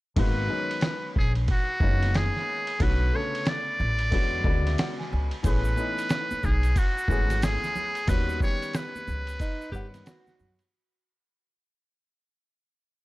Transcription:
0.16 0.45 G#1 loud
0.16 0.46 D#3 medium
0.16 0.46 G#3 medium
0.16 0.46 A#3 medium
0.16 0.47 B3 medium
0.16 0.47 F#4 medium
0.16 1.13 B4 medium
0.16 kick loud
0.16 ride medium
0.48 1.65 D#3 medium
0.48 1.65 F#3 soft
0.48 1.65 G#3 medium
0.48 1.66 B3 medium
0.48 1.66 C#4 medium
0.71 ride soft
0.81 snare loud
0.81 hi-hat pedal soft
0.81 ride medium
1.16 1.45 A#1 medium
1.16 1.33 G#4 medium
1.16 kick medium
1.35 ride soft
1.48 2.18 F#4 medium
1.48 kick medium
1.48 ride medium
1.80 2.27 F#1 medium
1.80 2.68 D#3 medium
1.80 2.69 G#3 medium
1.80 2.69 A#3 medium
1.80 2.70 B3 medium
1.80 2.70 C#4 medium
1.80 kick medium
2.03 snare soft
2.03 ride medium
2.14 2.84 G#4 medium
2.14 snare loud
2.14 hi-hat pedal soft
2.14 ride medium
2.36 snare soft
2.67 ride medium
2.78 3.09 B1 loud
2.78 3.09 D3 medium
2.78 3.09 A3 medium
2.78 3.10 B3 medium
2.78 3.10 C#4 medium
2.78 3.10 F#4 medium
2.78 kick loud
2.78 ride medium
2.83 3.17 B4 medium
3.12 4.13 C#3 medium
3.12 4.09 D3 medium
3.12 4.12 A3 medium
3.12 4.11 B3 medium
3.12 4.13 A4 medium
3.12 3.50 C#5 medium
3.35 ride medium
3.46 5.13 D5 loud
3.46 snare loud
3.46 hi-hat pedal soft
3.46 ride medium
3.80 4.08 A1 medium
3.99 ride medium
4.11 4.41 E2 medium
4.11 4.41 D3 medium
4.11 4.41 G#3 medium
4.11 4.42 B3 medium
4.11 4.42 C#4 medium
4.11 4.42 F#4 medium
4.11 kick medium
4.11 ride medium
4.43 4.73 D2 medium
4.43 5.33 C#3 medium
4.43 5.32 D3 medium
4.43 5.32 G#3 medium
4.43 5.33 B3 medium
4.43 5.34 F#4 medium
4.43 4.64 D5 medium
4.43 kick medium
4.66 4.78 E5 medium
4.66 snare soft
4.66 ride medium
4.78 4.98 F#5 medium
4.78 snare loud
4.78 hi-hat pedal soft
4.78 ride medium
4.99 5.11 G#5 medium
4.99 snare soft
5.12 5.30 C#2 medium
5.12 5.42 G#5 medium
5.31 ride medium
5.43 5.73 A1 loud
5.43 5.73 E3 medium
5.43 5.73 A3 medium
5.43 5.74 B3 medium
5.43 5.74 C#4 medium
5.43 5.74 G#4 medium
5.43 6.47 B4 medium
5.43 kick loud
5.43 ride medium
5.43 shaker medium
5.64 shaker soft
5.76 6.92 E3 medium
5.76 6.93 A3 medium
5.76 6.93 B3 medium
5.76 6.94 C#4 medium
5.76 6.94 D#4 medium
5.76 high conga soft
5.76 shaker soft
5.98 ride medium
5.98 shaker soft
6.09 snare loud
6.09 hi-hat pedal soft
6.09 ride medium
6.09 shaker medium
6.31 muted upright bass stroke soft
6.31 high conga medium
6.31 shaker soft
6.43 6.72 B1 medium
6.43 6.80 G#4 medium
6.43 kick medium
6.43 low conga medium
6.43 shaker soft
6.63 ride soft
6.63 shaker soft
6.76 7.45 F#4 medium
6.76 kick medium
6.76 ride medium
6.76 shaker medium
6.98 shaker soft
7.08 7.55 G#1 medium
7.08 7.96 E3 medium
7.08 7.97 A3 medium
7.08 7.97 B3 medium
7.08 7.98 C#4 medium
7.08 7.98 G#4 medium
7.08 kick loud
7.08 shaker soft
7.30 snare soft
7.30 ride medium
7.30 high conga medium
7.30 shaker soft
7.42 8.11 G#4 medium
7.42 snare loud
7.42 hi-hat pedal soft
7.42 ride medium
7.42 shaker medium
7.63 snare soft
7.63 shaker soft
7.76 low conga medium
7.76 shaker soft
7.95 ride medium
7.95 shaker soft
8.07 8.37 D#2 loud
8.07 8.37 D#3 medium
8.07 8.37 G3 medium
8.07 8.38 B3 medium
8.07 8.38 C#4 medium
8.07 8.39 F#4 medium
8.07 8.42 B4 medium
8.07 kick loud
8.07 ride medium
8.07 shaker medium
8.29 shaker soft
8.40 9.56 D#3 medium
8.40 9.57 G3 medium
8.40 9.57 B3 medium
8.40 9.57 C#4 medium
8.40 9.58 G4 medium
8.40 8.77 C#5 medium
8.40 kick loud
8.40 high conga soft
8.40 shaker soft
8.62 ride soft
8.62 shaker soft
8.73 10.40 B4 medium
8.73 snare loud
8.73 hi-hat pedal soft
8.73 ride medium
8.73 shaker medium
8.96 high conga medium
8.96 shaker soft
9.08 9.36 C#2 medium
9.08 low conga medium
9.08 shaker soft
9.27 ride soft
9.27 shaker soft
9.40 9.71 D#4 medium
9.40 kick medium
9.40 ride medium
9.40 shaker medium
9.61 shaker soft
9.72 10.01 G2 medium
9.72 10.60 D#3 medium
9.72 10.61 G3 medium
9.72 10.61 B3 medium
9.72 10.62 C#4 medium
9.72 9.87 G4 loud
9.72 10.62 F#5 medium
9.72 kick loud
9.72 shaker soft
9.94 snare soft
9.94 ride medium
9.94 high conga medium
9.94 shaker soft
10.06 10.68 F#4 medium
10.06 snare loud
10.06 hi-hat pedal soft
10.06 ride medium
10.06 high conga soft
10.06 shaker medium
10.27 snare soft
10.27 high conga medium
10.27 shaker soft
10.40 10.57 F#2 medium
10.40 low conga medium
10.40 shaker soft
10.59 ride medium
10.59 shaker soft

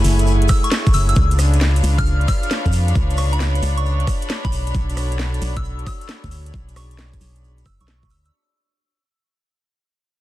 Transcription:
0.00 1.17 A3 medium
0.00 1.13 E4 medium
0.00 1.16 E4 medium
0.00 4.48 G#4 medium
0.00 1.12 A4 medium
0.00 1.12 C#5 medium
0.00 1.17 F#5 medium
0.00 2.23 G#5 medium
0.04 0.47 F#1 loud
0.04 open hi-hat loud
0.04 shaker loud
0.19 closed hi-hat medium
0.19 shaker soft
0.27 shaker medium
0.42 closed hi-hat soft
0.49 0.61 E6 medium
0.49 kick loud
0.49 cross-stick medium
0.49 open hi-hat loud
0.49 shaker loud
0.64 0.83 C#6 medium
0.64 closed hi-hat medium
0.64 shaker soft
0.72 snare loud
0.72 shaker medium
0.86 kick loud
0.86 closed hi-hat soft
0.86 shaker soft
0.93 1.14 F#1 medium
0.93 1.04 E6 medium
0.93 open hi-hat loud
0.93 shaker loud
1.09 1.14 E6 medium
1.09 closed hi-hat medium
1.09 shaker soft
1.16 1.82 C#2 loud
1.16 8.33 D4 loud
1.16 8.29 D4 medium
1.16 4.49 F4 medium
1.16 4.49 B4 loud
1.16 kick loud
1.16 shaker medium
1.31 8.33 C#5 medium
1.31 closed hi-hat medium
1.31 shaker soft
1.39 cross-stick medium
1.39 open hi-hat loud
1.39 shaker loud
1.48 8.33 B5 medium
1.54 4.52 F5 medium
1.54 closed hi-hat medium
1.54 shaker soft
1.61 snare loud
1.61 shaker medium
1.76 closed hi-hat medium
1.76 shaker soft
1.83 2.26 C#2 loud
1.83 open hi-hat loud
1.83 shaker medium
1.98 2.18 F6 medium
1.98 kick loud
1.98 closed hi-hat medium
1.98 shaker soft
2.06 shaker soft
2.21 closed hi-hat soft
2.28 2.49 F6 medium
2.28 kick loud
2.28 cross-stick medium
2.28 open hi-hat loud
2.28 shaker medium
2.43 closed hi-hat medium
2.43 shaker soft
2.50 snare loud
2.50 shaker medium
2.66 2.94 F2 loud
2.66 kick medium
2.66 closed hi-hat soft
2.66 shaker soft
2.72 open hi-hat loud
2.72 shaker loud
2.88 closed hi-hat medium
2.88 shaker soft
2.95 3.61 C#2 loud
2.95 kick loud
2.95 shaker medium
3.10 closed hi-hat medium
3.10 shaker soft
3.17 3.30 C#6 medium
3.17 cross-stick medium
3.17 open hi-hat loud
3.17 shaker medium
3.33 3.52 B5 medium
3.33 closed hi-hat medium
3.33 shaker soft
3.40 snare loud
3.40 shaker soft
3.55 closed hi-hat medium
3.55 shaker soft
3.62 4.05 C#2 loud
3.62 open hi-hat loud
3.62 shaker medium
3.77 3.97 C#6 medium
3.77 closed hi-hat medium
3.77 shaker soft
3.86 shaker soft
4.00 closed hi-hat soft
4.07 kick loud
4.07 cross-stick medium
4.07 open hi-hat loud
4.07 shaker medium
4.22 closed hi-hat medium
4.22 shaker soft
4.29 snare loud
4.29 shaker medium
4.45 4.73 B1 loud
4.45 4.58 B5 medium
4.45 kick loud
4.45 closed hi-hat soft
4.45 shaker soft
4.52 8.29 F#4 medium
4.52 6.30 A4 medium
4.52 8.29 C#5 medium
4.52 open hi-hat loud
4.52 shaker medium
4.67 closed hi-hat medium
4.67 shaker soft
4.75 5.40 B1 loud
4.75 kick loud
4.75 shaker medium
4.90 closed hi-hat medium
4.90 shaker soft
4.97 cross-stick medium
4.97 open hi-hat loud
4.97 shaker medium
5.12 closed hi-hat medium
5.12 shaker soft
5.19 snare loud
5.19 shaker soft
5.34 closed hi-hat medium
5.34 shaker soft
5.42 5.85 B1 loud
5.42 open hi-hat loud
5.42 shaker medium
5.57 5.76 E6 medium
5.57 kick loud
5.57 closed hi-hat medium
5.57 shaker soft
5.64 shaker soft
5.79 closed hi-hat soft
5.87 6.07 E6 medium
5.87 kick loud
5.87 cross-stick medium
5.87 open hi-hat loud
5.87 shaker medium
6.01 closed hi-hat medium
6.01 shaker soft
6.09 snare loud
6.09 shaker medium
6.24 6.52 D2 loud
6.24 kick medium
6.24 closed hi-hat soft
6.24 shaker soft
6.31 8.31 G#4 medium
6.31 open hi-hat loud
6.31 shaker medium
6.46 closed hi-hat medium
6.46 shaker soft
6.54 7.19 B1 loud
6.54 kick loud
6.54 shaker medium
6.69 closed hi-hat medium
6.69 shaker soft
6.76 6.88 C#6 medium
6.76 cross-stick medium
6.76 open hi-hat loud
6.76 shaker medium
6.91 closed hi-hat medium
6.91 shaker soft
6.99 snare loud
6.99 shaker soft
7.14 kick medium
7.14 closed hi-hat medium
7.14 shaker soft
7.21 7.64 B1 loud
7.21 open hi-hat loud
7.21 shaker loud
7.36 closed hi-hat medium
7.36 shaker soft
7.44 shaker soft
7.58 closed hi-hat soft
7.58 shaker soft
7.66 7.78 F#1 medium
7.66 7.78 E6 medium
7.66 kick loud
7.66 cross-stick medium
7.66 open hi-hat loud
7.66 shaker medium
7.81 8.12 B1 loud
7.81 8.00 C#6 medium
7.81 closed hi-hat medium
7.81 shaker soft
7.88 snare loud
7.88 shaker soft
8.03 kick loud
8.03 closed hi-hat soft
8.03 shaker soft
8.10 8.31 D2 medium
8.10 8.20 E6 medium
8.10 open hi-hat loud
8.10 shaker loud
8.25 8.30 E6 medium
8.25 closed hi-hat medium
8.25 shaker soft

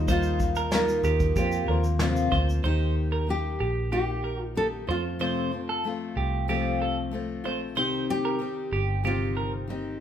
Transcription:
0.00 1.00 D#2 loud
0.00 0.78 G3 medium
0.00 0.11 D#4 loud
0.00 0.79 F4 medium
0.00 0.79 D#5 medium
0.08 0.70 D#3 medium
0.08 0.71 G3 medium
0.08 0.72 A#3 medium
0.08 0.72 D#4 medium
0.08 0.72 F4 loud
0.08 0.39 C5 loud
0.08 kick loud
0.08 shaker medium
0.23 shaker soft
0.40 kick medium
0.40 shaker medium
0.55 0.72 A#4 medium
0.55 shaker medium
0.71 1.04 D#3 medium
0.71 1.04 G3 medium
0.71 1.04 A#3 medium
0.71 1.04 D#4 medium
0.71 1.02 F4 loud
0.71 1.65 A#4 medium
0.71 snare loud
0.71 shaker medium
0.88 shaker medium
1.03 1.33 D#2 loud
1.03 1.35 A#3 soft
1.03 1.36 D#4 medium
1.03 1.36 F4 medium
1.03 1.35 G4 medium
1.03 shaker medium
1.20 kick medium
1.20 shaker soft
1.35 1.65 F2 medium
1.35 1.99 F3 medium
1.35 1.62 A#3 medium
1.35 2.00 A#3 medium
1.35 2.00 C4 medium
1.35 1.62 F4 medium
1.35 2.00 F4 medium
1.35 1.67 G4 medium
1.35 1.63 C5 medium
1.35 kick medium
1.35 shaker medium
1.52 shaker medium
1.68 2.28 D#2 medium
1.68 2.37 A#3 medium
1.68 2.38 F4 medium
1.68 1.83 A#4 medium
1.68 2.38 C5 medium
1.84 shaker soft
1.99 2.32 F2 medium
1.99 2.32 C3 medium
1.99 2.32 F3 medium
1.99 2.32 A#3 medium
1.99 2.31 C4 medium
1.99 2.30 F4 loud
1.99 snare loud
1.99 shaker medium
2.16 shaker soft
2.31 2.62 D2 medium
2.31 2.63 F3 soft
2.31 2.63 A#3 soft
2.31 2.64 C4 medium
2.31 2.64 F4 medium
2.31 2.47 C5 medium
2.31 kick medium
2.49 shaker soft
2.64 3.56 D#2 medium
2.64 3.26 D#3 medium
2.64 3.27 A#3 medium
2.64 3.28 D#4 medium
2.64 3.29 G4 medium
2.64 2.95 C5 medium
3.12 3.27 A#4 medium
3.27 3.90 D#3 soft
3.27 3.91 A#3 medium
3.27 3.92 D#4 medium
3.27 3.93 G4 soft
3.60 4.84 A#1 medium
3.60 3.91 G4 medium
3.92 4.54 D#3 medium
3.92 4.55 A#3 medium
3.92 4.56 D#4 medium
3.92 4.23 G4 medium
3.92 4.57 G4 medium
4.24 4.39 A#4 medium
4.43 4.57 F4 medium
4.55 4.88 D#3 medium
4.55 4.88 A#3 medium
4.55 4.88 D#4 medium
4.55 4.87 G4 medium
4.55 4.66 A4 loud
4.87 6.13 F2 medium
4.87 5.19 F3 soft
4.87 5.19 A3 soft
4.87 5.20 C4 soft
4.87 5.20 F4 medium
4.87 5.04 C5 medium
5.19 5.52 F2 medium
5.19 5.52 C3 medium
5.19 5.52 F3 medium
5.19 5.52 A3 medium
5.19 5.51 C4 medium
5.19 5.50 F4 medium
5.19 5.51 C5 medium
5.51 5.83 F3 soft
5.51 5.84 A3 soft
5.51 5.84 C4 soft
5.51 5.84 F4 soft
5.69 5.84 A4 medium
5.84 6.48 F3 medium
5.84 6.48 A3 medium
5.84 6.49 C4 medium
5.84 6.49 F4 medium
6.16 7.44 C2 medium
6.16 6.47 G4 medium
6.48 7.12 F2 medium
6.48 7.13 C3 medium
6.48 7.10 F3 medium
6.48 7.11 A3 medium
6.48 7.13 C4 medium
6.48 7.13 F4 medium
6.48 6.79 G4 medium
6.82 6.96 A4 medium
7.11 7.44 F3 medium
7.11 7.45 A3 medium
7.11 7.44 C4 medium
7.11 7.43 F4 medium
7.44 7.76 A#1 medium
7.44 7.76 F3 soft
7.44 7.76 A3 medium
7.44 7.76 C4 medium
7.44 7.76 F4 medium
7.44 7.60 C5 medium
7.75 8.69 C2 loud
7.75 8.40 C3 medium
7.75 8.38 D#3 medium
7.75 8.39 C4 medium
7.75 8.40 D#4 medium
7.75 8.40 G4 medium
7.75 8.07 C5 medium
8.10 9.08 G4 loud
8.25 8.40 A#4 medium
8.39 9.03 D#3 medium
8.39 9.03 C4 medium
8.39 9.04 D#4 medium
8.39 9.04 G4 medium
8.72 9.96 G1 medium
8.72 9.03 G4 medium
9.04 9.68 C3 medium
9.04 9.66 D#3 medium
9.04 9.68 C4 medium
9.04 9.69 D#4 medium
9.04 9.66 F4 medium
9.04 9.35 G4 medium
9.04 9.69 G4 medium
9.37 9.52 A#4 medium
9.68 10.00 D#3 medium
9.68 10.00 C4 soft
9.68 10.00 D#4 medium
9.68 9.98 G4 medium

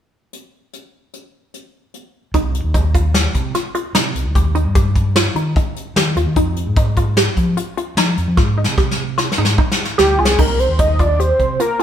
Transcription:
0.33 closed hi-hat soft
0.73 closed hi-hat soft
1.13 closed hi-hat soft
1.54 closed hi-hat soft
1.94 closed hi-hat soft
2.34 2.60 C2 medium
2.34 2.65 D#4 medium
2.34 kick medium
2.34 closed hi-hat medium
2.55 closed hi-hat medium
2.64 3.24 D#2 medium
2.74 2.90 D#4 medium
2.74 kick medium
2.74 closed hi-hat medium
2.95 3.10 F4 medium
2.95 kick medium
2.95 closed hi-hat medium
3.14 3.45 G4 medium
3.14 snare loud
3.14 closed hi-hat medium
3.34 3.52 C3 medium
3.34 kick medium
3.34 closed hi-hat medium
3.55 3.70 F4 medium
3.55 snare soft
3.55 closed hi-hat medium
3.75 3.90 F4 medium
3.75 closed hi-hat medium
3.95 4.12 C3 medium
3.95 4.26 D#4 medium
3.95 snare medium
3.95 closed hi-hat medium
4.15 4.24 C2 medium
4.15 closed hi-hat medium
4.25 4.34 D2 medium
4.35 4.61 D#2 medium
4.35 4.51 G4 medium
4.35 kick medium
4.35 closed hi-hat medium
4.55 4.71 D#4 medium
4.55 closed hi-hat medium
4.65 5.25 G2 medium
4.75 5.06 G4 medium
4.75 kick loud
4.75 closed hi-hat medium
4.95 kick medium
4.95 closed hi-hat medium
5.16 5.32 F4 medium
5.16 snare medium
5.16 closed hi-hat medium
5.35 5.53 D#3 medium
5.35 5.51 D#4 medium
5.35 closed hi-hat medium
5.56 5.87 D#4 medium
5.56 kick medium
5.56 closed hi-hat medium
5.76 closed hi-hat soft
5.96 6.13 D#3 medium
5.96 6.12 G4 medium
5.96 snare medium
5.96 closed hi-hat medium
6.16 6.25 D#2 medium
6.16 6.32 F4 medium
6.16 closed hi-hat medium
6.26 6.35 D#3 medium
6.36 6.62 F2 medium
6.36 6.67 D#4 medium
6.36 kick medium
6.36 closed hi-hat medium
6.56 closed hi-hat medium
6.66 7.26 G#2 medium
6.76 6.92 D#4 medium
6.76 kick loud
6.76 closed hi-hat medium
6.97 7.13 F4 medium
6.97 kick medium
6.97 closed hi-hat medium
7.17 7.48 G4 medium
7.17 snare medium
7.17 closed hi-hat medium
7.37 7.54 F3 medium
7.37 kick medium
7.37 closed hi-hat medium
7.57 7.73 F4 medium
7.57 closed hi-hat medium
7.77 7.93 F4 medium
7.77 closed hi-hat soft
7.97 8.14 F3 medium
7.97 8.28 D#4 medium
7.97 snare loud
7.97 closed hi-hat medium
8.17 8.26 F2 medium
8.17 closed hi-hat medium
8.28 8.36 F3 medium
8.37 8.63 G#2 medium
8.37 8.53 F4 medium
8.37 kick loud
8.37 snare soft
8.58 8.73 D#4 medium
8.64 9.28 C3 medium
8.64 snare medium
8.78 9.09 G4 medium
8.78 kick medium
8.78 snare soft
8.91 snare medium
9.18 9.33 F4 medium
9.18 snare medium
9.32 snare medium
9.38 9.55 G#2 medium
9.38 9.54 D#4 medium
9.45 snare medium
9.58 9.89 D#4 medium
9.58 kick medium
9.72 snare medium
9.85 snare medium
9.98 10.17 D2 medium
9.98 10.14 G4 medium
9.98 10.21 G4 medium
9.98 snare medium
10.19 10.37 C2 medium
10.19 10.34 F4 medium
10.19 10.41 G#4 medium
10.25 snare medium
10.39 10.65 C2 medium
10.39 10.70 D#4 medium
10.39 10.61 A#4 loud
10.39 kick medium
10.39 crash medium
10.59 10.81 C5 medium
10.59 closed hi-hat medium
10.69 11.29 D#2 medium
10.79 10.94 D#4 medium
10.79 11.01 D#5 medium
10.79 kick medium
10.79 closed hi-hat medium
10.99 11.15 F4 medium
10.99 11.21 D5 medium
10.99 kick medium
10.99 closed hi-hat medium
11.19 11.50 G4 medium
11.19 11.59 C5 medium
11.19 closed hi-hat medium
11.40 11.57 C3 medium
11.40 kick medium
11.40 closed hi-hat soft
11.60 11.75 F4 medium
11.60 11.82 A#4 medium
11.60 closed hi-hat medium
11.80 11.83 F4 medium

